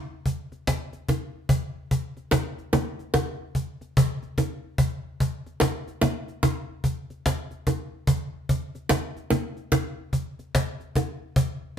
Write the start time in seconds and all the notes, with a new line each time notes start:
0.26 cajon bass
0.52 cajon slap
0.67 cajon bass, cajon slap
0.93 cajon slap
1.09 cajon bass, high bongo
1.49 cajon bass
1.91 cajon bass
2.17 cajon slap
2.31 cajon bass, cajon slap, high bongo
2.58 cajon slap
2.73 cajon bass, high bongo, low bongo
2.99 cajon slap
3.14 cajon bass, high bongo
3.55 cajon bass
3.81 cajon slap
3.97 cajon bass, cajon slap
4.22 cajon slap
4.38 cajon bass, high bongo
4.78 cajon bass
5.20 cajon bass
5.46 cajon slap
5.60 cajon bass, cajon slap, high bongo
5.88 cajon slap
6.01 cajon bass, high bongo, low bongo
6.28 cajon slap
6.43 cajon bass, high bongo
6.84 cajon bass
7.10 cajon slap
7.26 cajon bass, cajon slap
7.51 cajon slap
7.67 cajon bass, high bongo
8.07 cajon bass
8.49 cajon bass
8.75 cajon slap
8.89 cajon bass, cajon slap, high bongo
9.17 cajon slap
9.30 cajon bass, high bongo, low bongo
9.57 cajon slap
9.72 cajon bass, high bongo
10.13 cajon bass
10.39 cajon slap
10.55 cajon bass, cajon slap
10.80 cajon slap
10.96 cajon bass, high bongo
11.36 cajon bass